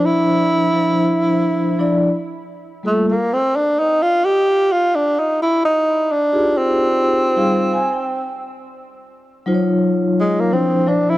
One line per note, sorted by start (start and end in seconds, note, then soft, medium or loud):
0.00 0.63 F3 medium
0.00 0.63 D4 medium
0.00 0.64 E4 medium
0.00 0.64 C5 medium
0.05 2.15 E4 medium
0.73 1.74 F3 medium
0.73 1.74 D4 medium
0.73 1.74 E4 medium
0.73 1.75 C5 medium
1.78 2.06 F3 medium
1.78 2.06 D4 medium
1.78 2.07 E4 medium
1.78 2.07 D5 medium
2.83 3.11 G3 medium
2.83 3.08 A3 medium
2.83 3.11 A#3 medium
2.83 3.12 F4 soft
2.83 3.12 A4 medium
3.08 3.12 A3 medium
3.08 3.35 A#3 medium
3.33 3.57 C4 medium
3.56 3.81 D4 medium
3.79 4.04 D#4 medium
4.02 4.27 F4 loud
4.25 4.74 G4 loud
4.72 4.97 F4 loud
4.96 5.21 D4 medium
5.19 5.41 D#4 medium
5.42 5.63 E4 medium
5.65 6.13 D#4 medium
6.12 6.59 D4 medium
6.33 7.33 D#4 medium
6.33 7.33 F4 medium
6.33 7.32 G4 medium
6.33 7.33 G#4 medium
6.58 8.32 C4 medium
7.36 7.64 G3 medium
7.36 7.64 D#4 medium
7.36 7.65 F4 medium
7.36 7.65 G#4 medium
7.36 7.58 F5 medium
7.59 7.72 F5 medium
7.73 7.93 G#5 medium
7.93 8.38 G5 medium
9.46 10.46 F#3 medium
9.46 10.46 D#4 medium
9.46 10.47 F4 medium
9.46 9.56 C5 medium
9.54 10.50 C#5 medium
10.20 10.42 G#3 medium
10.41 10.55 A#3 medium
10.52 10.79 F3 medium
10.52 10.90 C4 medium
10.52 10.79 D4 medium
10.52 10.79 E4 medium
10.52 10.79 C5 medium
10.87 11.18 F3 medium
10.87 11.18 D4 medium
10.87 11.11 D4 medium
10.87 11.18 E4 medium
10.87 11.18 C5 medium
11.10 11.18 E4 loud